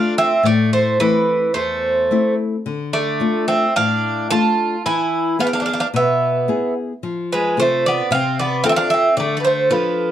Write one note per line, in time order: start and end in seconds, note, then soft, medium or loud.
0.00 0.31 A3 soft
0.00 0.14 D4 medium
0.00 0.32 D4 soft
0.00 0.32 F4 medium
0.00 0.14 F5 loud
0.18 0.42 C4 medium
0.18 0.45 E5 loud
0.43 0.97 A2 medium
0.43 0.70 A3 medium
0.43 0.73 D5 medium
0.73 0.98 A3 medium
0.73 0.98 C5 medium
1.00 1.51 E3 medium
1.00 1.44 A3 medium
1.00 1.44 C4 soft
1.00 1.44 E4 medium
1.00 1.54 B4 medium
1.54 2.08 E2 medium
1.54 2.34 A3 medium
1.54 2.33 C5 medium
2.11 2.55 A3 medium
2.11 2.55 C4 soft
2.11 2.55 E4 medium
2.66 3.19 D3 medium
2.93 3.44 A3 medium
2.93 3.44 D5 medium
3.20 3.64 A3 medium
3.20 3.65 D4 soft
3.20 3.65 F4 medium
3.48 3.74 C4 medium
3.48 3.74 E5 medium
3.76 4.30 A2 medium
3.76 4.27 D4 medium
3.76 4.30 F5 medium
4.30 4.75 A3 medium
4.30 4.75 D4 soft
4.30 4.82 F4 medium
4.30 4.75 F4 medium
4.30 4.86 A5 loud
4.86 5.39 E3 medium
4.86 5.36 E4 medium
4.86 5.40 G#5 loud
5.39 5.83 B3 medium
5.39 5.46 B3 medium
5.39 5.83 E4 soft
5.39 5.83 G#4 medium
5.39 5.45 F5 medium
5.47 5.54 D4 medium
5.47 5.52 F5 medium
5.53 5.60 D4 medium
5.53 5.59 F5 medium
5.60 5.67 D4 medium
5.60 5.64 F5 medium
5.66 5.74 D4 medium
5.66 5.72 F5 medium
5.73 5.79 D4 medium
5.73 5.79 F5 medium
5.80 5.86 D4 medium
5.80 5.87 F5 medium
5.94 6.47 B2 medium
5.94 6.73 B3 medium
5.94 6.73 E5 medium
6.48 6.92 B3 medium
6.48 6.92 E4 soft
6.48 6.92 G#4 medium
7.03 7.56 F3 medium
7.32 7.57 G#3 medium
7.32 7.57 B4 medium
7.57 8.00 C3 soft
7.57 8.01 F4 soft
7.57 8.00 A4 medium
7.57 7.84 C5 medium
7.62 7.85 A3 medium
7.86 8.11 B3 medium
7.86 8.11 D5 medium
8.11 8.63 C3 medium
8.11 8.38 C4 medium
8.11 8.39 F5 loud
8.39 8.64 B3 medium
8.39 8.63 D5 medium
8.64 9.08 C4 medium
8.64 8.71 C4 medium
8.64 9.08 F4 soft
8.64 9.08 A4 medium
8.64 8.69 F5 loud
8.69 8.77 C4 medium
8.69 8.76 E5 medium
8.76 8.91 D4 medium
8.76 8.90 F5 loud
8.90 9.17 C4 medium
8.90 9.16 E5 loud
9.17 9.69 D3 medium
9.17 9.38 A3 medium
9.17 9.36 D5 medium
9.37 9.45 B3 medium
9.37 9.44 D5 medium
9.45 9.71 A3 medium
9.45 9.69 C5 medium
9.70 10.12 F3 medium
9.70 10.12 D4 medium
9.70 10.12 F4 soft
9.70 10.12 A4 medium
9.70 10.12 B4 medium